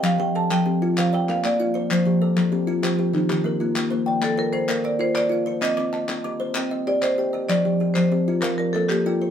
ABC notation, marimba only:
X:1
M:12/8
L:1/8
Q:3/8=129
K:Fmix
V:1 name="Marimba"
f g a g2 z f g f d3 | c8 z4 | z3 A B c B d c d3 | e6 z2 d c2 z |
d3 c3 B B A G3 |]